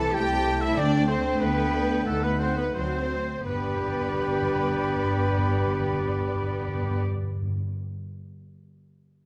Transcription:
Already playing: E3 C4 E4 A4 A5
0.14 C2 A3 G4 G5
0.61 E4 E5
0.76 D2 D3 D4 D5 G5
1.08 C4 C5
1.40 D2 B3 B4
2.05 D2 A3 D#4 A4 F#5
2.23 B3 B4
2.40 C4 C5
2.57 B3 B4
2.74 D2 F#3 C4 C5
3.45 G1 G2 B3 D4 G4 B4 D5 G5 B5
3.53 G2
3.60 G2
3.67 G2
3.74 G2
3.81 G2
3.88 G2
3.94 G2
4.01 G2
4.07 G2
4.14 G2
4.20 G2
4.27 G2
4.35 G2
4.42 G2
4.48 G2
4.56 G2
4.62 G2
4.69 G2
4.76 G2
4.83 G2
4.89 G2
4.96 G2
5.03 G2
5.10 G2
5.17 G2
5.24 G2
5.31 G2
5.38 G2
5.44 G2
5.51 G2
5.65 G2
5.79 G2
5.86 G2
5.93 G2
6.00 G2
6.07 G2
6.14 G2
6.20 G2
6.28 G2
6.35 G2
6.42 G2
6.48 G2
6.55 G2
6.61 G2
6.67 G2
6.74 G2
6.82 G2
6.89 G2
6.95 G2
7.02 G2
7.09 G2
7.16 G2
7.22 G2
7.29 G2
7.36 G2
7.42 G2
7.48 G2
7.55 G2
7.62 G2

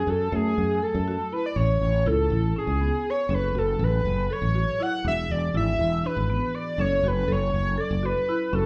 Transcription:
Already playing: G#4
0.07 F#2 F#4 A4
0.32 F#2 A3 G#4
0.58 F#2
0.82 A4
0.95 F#2
1.08 F#4
1.33 E4 B4
1.46 D5
1.56 A1 C#4 C#5
1.81 A1
2.06 C#2 E4 A4
2.30 A1 E4
2.56 C#4 G#4
2.67 C#2
2.81 B3
3.10 C#5
3.29 F#1 F#3 C#4 E4 G#4 A4 B4
3.34 B4
3.55 F#1 F#4 A4
3.79 A1 A4
3.84 B4
4.05 F#1
4.30 A4 C#5
4.42 A1
4.55 F#4
4.80 E4 F#5
5.05 E1 E3 D4 F#4 G#4 E5
5.30 E1 D5
5.54 G#1 E4 E5
5.79 E1 E4
6.04 D4 B4
6.17 G#1
6.30 B3
6.54 D5
6.78 F#1 F#3 C#4 E4 A4 C#5
7.03 F#1 F#4
7.07 B4
7.28 F#1 A4
7.32 C#5
7.54 F#1
7.78 A4 D5
7.91 F#1
8.03 F#4 B4
8.29 E4
8.52 F#1 F#3 C#4 E4 F#4 A4

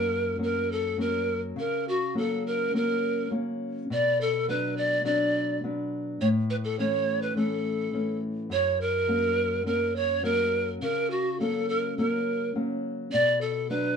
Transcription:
Already playing: F#2 F#3 A#3 C#4 A#4
0.38 F#3 A#3 C#4
0.43 A#4
0.71 A4
0.98 F#3 A#3 C#4 A#4
1.56 C#3 A#4
1.88 F#4
2.15 F#3 A#3 C#4 A4
2.46 A#4
2.74 F#3 A#3 C#4 A#4
3.30 F#3 A#3 C#4
3.90 B2 D5
4.21 A4
4.48 F#3 B3 D4 B4
4.77 D5
5.04 F#3 B3 D4 D5
5.64 F#3 B3 D4
6.21 A2 C#5
6.50 B4
6.64 A4
6.79 E3 A3 C#4 C#5
7.22 B4
7.36 E3 A3 C#4 A4
7.93 E3 A3 C#4
8.50 F#2 C#5
8.81 A#4
9.08 F#3 A#3 C#4
9.66 F#3 A#3 C#4 A#4
9.96 C#5
10.23 F#3 A#3 C#4 A#4
10.82 C#3 A#4
11.10 F#4
11.40 F#3 A#3 C#4 A4
11.68 A#4
11.97 F#3 A#3 C#4 A#4
12.55 F#3 A#3 C#4
13.12 B2 D5
13.41 A4
13.70 F#3 B3 D4 B4

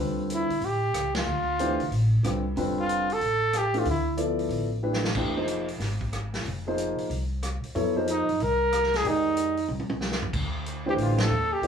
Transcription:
Already playing: D2 D3 G3 C4 F4
0.00 B4
0.30 closed hi-hat
0.34 E4
0.50 muted upright bass stroke, open hi-hat
0.61 A1, open hi-hat
0.65 G4
0.94 C#2, cross-stick, closed hi-hat
1.15 F4, snare, ride
1.26 D2
1.59 E3 A3 D4 G4 C5, closed hi-hat
1.80 C2, open hi-hat
1.91 A1, open hi-hat
2.23 C2 D3 G3 C4 F4 B4, cross-stick, closed hi-hat
2.56 F1 D3 G3 C4 F4 B4, open hi-hat
2.80 F4
2.89 closed hi-hat
3.10 A4, open hi-hat
3.21 A1, open hi-hat
3.53 cross-stick, closed hi-hat
3.58 G4
3.74 E3 A3 D4 G4 A4, open hi-hat
3.79 F4
3.85 D2, open hi-hat
3.90 E4
4.17 F3 B3 E4 A4 D5, closed hi-hat
4.39 open hi-hat
4.49 A1, open hi-hat
4.83 E3 A3 D4 G4 B4
4.93 snare
5.04 snare
5.15 F1 E3 A3 D4 G4 B4, kick, crash
5.36 F3 A#3 D#4 G#4 C5
5.48 closed hi-hat
5.68 open hi-hat
5.79 G#1, snare, open hi-hat
6.01 kick
6.13 cross-stick, closed hi-hat
6.34 snare, open hi-hat
6.45 F1, open hi-hat
6.67 F3 A#3 D#4 G#4 C5
6.78 closed hi-hat
6.98 muted upright bass stroke, open hi-hat
7.10 C2, open hi-hat
7.43 cross-stick, closed hi-hat
7.63 muted upright bass stroke, open hi-hat
7.75 F2 F#3 B3 E4 A4 C#5, open hi-hat
7.95 F3 A#3 D#4 G#4 C5
8.07 D#4, closed hi-hat
8.28 F#2, open hi-hat
8.40 C2 A#4, open hi-hat
8.72 cross-stick, closed hi-hat
8.83 snare
8.94 G#4, snare, open hi-hat
9.04 F2 D#3 G#3 D#4 G4 A#4 D5, open hi-hat
9.37 closed hi-hat
9.57 open hi-hat
9.68 C2, high tom
9.80 high tom
9.90 high tom
10.01 snare
10.11 snare
10.22 floor tom
10.33 D2, kick, crash
10.66 closed hi-hat
10.86 E3 A3 D4 G4 C5
10.97 A1, open hi-hat
11.02 F4
11.18 A4, snare, ride
11.30 D#2
11.53 G4
11.62 D2 F3 B3 E4 A4 D5, open hi-hat

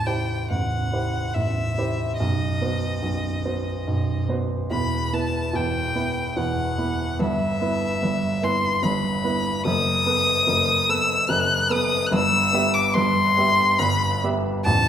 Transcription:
Already playing: A0 A1
0.06 E4 G4 C5 G5
0.50 A0 A1 F#5
0.92 E4 G4 C5
1.34 A0 A1 E5
1.78 E4 G4 C5
2.17 B0 B1 D#5
2.61 B3 F#4 C5
3.02 B0 B1
3.45 B3 F#4 C5
3.87 B0 B1
4.28 B3 F#4 C5
4.71 E1 E2 B5
5.13 B3 E4 B4 A5
5.53 E1 E2 G5
5.95 B3 E4 B4
6.37 E1 E2 F#5
6.78 B3 E4 B4
7.19 G1 G2 E5
7.61 B3 E4 B4
8.02 G1 G2
8.42 B3 E4 B4 C6
8.83 G1 G2 B5
9.24 B3 E4 B4
9.65 F#1 F#2 D#6
10.06 B3 A4 B4
10.47 F#1 F#2
10.89 B3 A4 B4 E6
11.29 F#1 F#2 F#6
11.70 B3 A4 B4 D#6
12.06 F#6
12.11 G1 G2 E6
12.53 B3 G4 E5
12.74 D6
12.93 G1 G2 C6
13.37 B3 G4 E5
13.79 G1 G2 B5
14.23 B3 G4 E5
14.64 A0 A1 A5

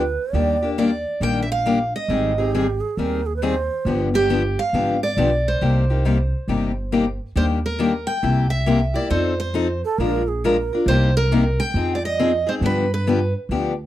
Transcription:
Already playing: D2 B4
0.33 D#2 D#3 G3 A#3 D4 G4 D5
0.62 A#3 D4 G4
0.78 D#3 G3 A#3 D4 G4 D5
1.20 A#1 D#3 G3 A#3 D4 G4 G5
1.42 E5
1.52 F5
1.66 D#3 G3 A#3 D4 G4
1.96 D#5
2.08 G#1 D#3 G3 C4 D#4 G#4
2.38 C4 D#4 G4 G#4
2.54 D#3 G3 C4 D#4 G#4
2.81 G#4
2.97 D#2 D#3 G3 C4 D#4 G#4 A#4
3.26 G#4
3.36 B4
3.42 D#3 G3 C4 D#4 G#4 C5
3.85 G1 D3 F3 B3 D4 G4
4.14 B3 D4 G4
4.29 D3 F3 B3 D4 G4
4.59 F5
4.73 G#1 D3 F3 B3 D4 G4
5.03 D5
5.17 B1 D3 F3 B3 D4 G4
5.48 C5
5.61 C2 C3 G3 A#3 D#4 G4
5.90 A#3 D#4 G4
6.05 C3 G3 A#3 D#4 G4
6.48 G1 C3 G3 A#3 D#4 G4
6.92 C3 G3 A#3 D#4 G4
7.36 D#2 D#3 G3 A#3 D4 G4 C5
7.66 A#4
7.79 D#3 G3 A#3 D4 G4
8.07 G5
8.23 C2 C3 G3 A#3 E4 G4
8.50 E5
8.66 C3 G3 A#3 E4 G4
8.94 A#3 E4 G4 D5
9.10 F2 F3 C4 D#4 A4 C5
9.40 C5
9.54 F3 C4 D#4 A4
9.85 A4
9.98 A#1 F3 G#3 D4 F4 A#4
10.28 G#4
10.44 F3 G#3 D4 F4 A#4
10.73 D4 F4 A#4
10.86 C2 C3 G3 A#3 D#4 G4 C5
11.17 A#4
11.32 C3 G3 A#3 D#4 G4
11.60 G5
11.74 F2 F3 C4 D#4 G#4
11.95 D5
12.05 D#5
12.19 F3 C4 D#4 G#4
12.47 C4 D#4 G#4 C5
12.61 G2 D3 F3 B3 D4 G4
12.66 B4
12.94 B4
13.07 D3 F3 B3 D4 G4
13.49 D2 D3 F3 B3 D4 G4

